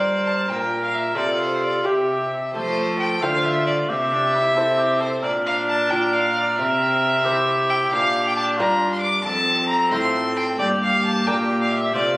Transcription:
0.00 0.46 G2 soft
0.00 0.49 G2 medium
0.00 1.12 D4 soft
0.00 0.49 A#4 medium
0.00 1.13 A#4 soft
0.00 0.50 C5 medium
0.00 0.28 D5 medium
0.27 0.50 A5 medium
0.49 1.16 A#2 medium
0.49 1.14 A#2 medium
0.49 1.17 A#4 medium
0.49 1.18 A#4 medium
0.49 0.83 G5 medium
0.84 0.95 F5 medium
0.94 1.16 E5 medium
1.15 1.84 C3 medium
1.15 1.82 C3 soft
1.15 1.82 F4 soft
1.15 1.87 F4 medium
1.15 1.84 A4 medium
1.15 1.83 C5 soft
1.15 1.39 D5 medium
1.41 1.63 C5 medium
1.63 1.85 D5 medium
1.84 2.33 C3 medium
1.84 2.30 C3 soft
1.84 2.51 G4 soft
1.84 2.31 G4 medium
1.84 2.20 G4 medium
1.84 2.52 C5 soft
1.84 2.52 E5 medium
2.54 3.24 F3 medium
2.54 3.18 F3 medium
2.54 3.18 A3 medium
2.54 3.18 A4 medium
2.54 2.96 C5 medium
2.99 3.24 G5 medium
3.22 3.86 D3 medium
3.22 3.89 D3 medium
3.22 3.91 A3 medium
3.22 3.86 A3 medium
3.22 3.90 F4 medium
3.22 3.86 F4 medium
3.22 3.86 C5 medium
3.22 3.46 F5 medium
3.44 3.66 E5 medium
3.67 3.75 D5 medium
3.89 5.20 C3 medium
3.89 5.21 C3 medium
3.89 4.14 C4 medium
3.89 4.55 G4 medium
3.89 5.02 E5 loud
4.13 4.36 D4 medium
4.35 4.57 E4 medium
4.56 5.27 C4 medium
4.56 5.20 E4 medium
4.56 4.79 A4 medium
4.56 5.20 C5 medium
4.78 5.02 G4 medium
5.00 5.23 A4 medium
5.00 5.23 C5 medium
5.22 6.54 A#2 medium
5.22 6.61 A#2 medium
5.22 6.58 D4 medium
5.22 5.89 A#4 medium
5.22 5.31 D5 medium
5.46 5.54 F5 medium
5.68 5.91 A5 medium
5.90 6.54 A#3 medium
5.90 6.54 F4 medium
5.90 7.26 A#4 medium
5.90 6.55 D5 medium
5.90 6.15 G5 medium
6.13 6.38 F5 medium
6.37 6.58 D5 medium
6.58 7.92 C3 medium
6.58 7.88 C3 medium
6.58 7.24 C4 medium
6.58 7.71 E5 loud
7.25 7.88 C4 medium
7.25 7.94 E4 medium
7.25 7.91 G4 medium
7.25 7.89 C5 medium
7.70 7.92 G5 medium
7.91 8.60 A#2 medium
7.91 8.55 A#2 medium
7.91 9.25 D4 medium
7.91 8.58 G4 medium
7.91 8.25 F5 loud
8.27 8.36 G5 medium
8.37 8.45 A5 medium
8.57 9.25 G2 medium
8.57 9.22 G2 medium
8.57 9.22 A#3 medium
8.57 9.01 F4 medium
8.57 9.22 F4 medium
8.57 9.22 D5 medium
8.57 8.92 A#5 loud
8.93 9.01 C6 medium
9.01 9.24 D6 loud
9.24 9.88 F2 medium
9.24 9.93 F2 medium
9.24 10.61 C4 medium
9.24 10.55 A4 medium
9.24 9.68 A5 loud
9.68 9.93 A#5 loud
9.91 10.59 A2 medium
9.91 10.55 A2 medium
9.91 10.55 A3 medium
9.91 10.55 F4 medium
9.91 10.56 C5 medium
9.91 10.38 C6 loud
10.37 10.58 G5 medium
10.59 11.23 G2 medium
10.59 11.28 G2 medium
10.59 11.93 A#3 medium
10.59 11.25 G4 medium
10.59 10.67 D5 loud
10.83 11.04 F5 loud
11.05 11.29 A5 loud
11.27 11.94 A#2 medium
11.27 11.91 A#2 medium
11.27 11.91 D4 medium
11.27 11.93 G4 medium
11.27 11.91 A#4 medium
11.27 11.61 G5 medium
11.61 11.72 F5 medium
11.73 11.94 E5 loud
11.94 12.17 C3 medium
11.94 12.17 A3 medium
11.94 12.17 F4 medium
11.94 12.17 C5 medium
11.94 12.16 D5 loud

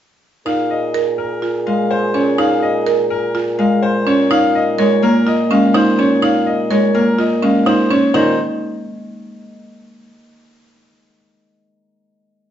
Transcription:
0.46 8.01 A#2 medium
0.46 0.77 D#4 medium
0.46 4.02 G#4 medium
0.46 0.78 F5 medium
0.70 1.02 D#5 medium
0.94 1.26 A#4 medium
1.18 1.49 A#4 medium
1.42 1.74 F4 soft
1.67 3.57 G#3 medium
1.67 1.98 F5 medium
1.91 2.22 C5 medium
2.14 2.46 C#4 medium
2.14 2.46 C#5 medium
2.38 2.70 D#4 medium
2.38 2.70 F5 medium
2.62 2.94 D#5 medium
2.87 3.18 A#4 medium
3.10 3.42 A#4 medium
3.35 3.66 F4 medium
3.59 4.77 G#3 medium
3.59 3.90 F5 medium
3.83 4.14 C5 medium
4.07 4.38 C#4 medium
4.07 4.38 C#5 medium
4.31 4.62 D#4 medium
4.31 4.62 F5 medium
4.55 4.86 D#5 medium
4.78 5.49 G#3 medium
4.78 5.10 A#4 medium
4.78 5.10 C#5 medium
5.02 6.93 A#3 medium
5.02 5.34 A#4 medium
5.27 5.58 F4 medium
5.27 5.58 D#5 medium
5.50 6.69 G#3 medium
5.50 5.82 C#4 medium
5.50 5.82 F5 medium
5.74 6.06 D#4 medium
5.74 6.06 C5 medium
5.99 6.30 C#4 medium
5.99 6.30 C#5 medium
6.22 6.54 D#4 medium
6.22 6.54 F5 medium
6.46 6.78 D#5 medium
6.70 7.41 G#3 medium
6.70 7.02 A#4 medium
6.70 7.02 C#5 medium
6.94 10.08 A#3 medium
6.94 7.26 A#4 medium
7.19 7.50 F4 medium
7.19 7.50 D#5 medium
7.42 10.08 G#3 medium
7.42 7.74 C#4 medium
7.42 7.74 F5 medium
7.66 7.98 D#4 medium
7.66 7.98 C5 medium
7.90 8.22 C#4 medium
7.90 8.22 C#5 medium
8.14 8.37 A#2 medium
8.14 8.37 D#3 medium
8.14 8.37 D#4 medium
8.14 8.37 C5 medium

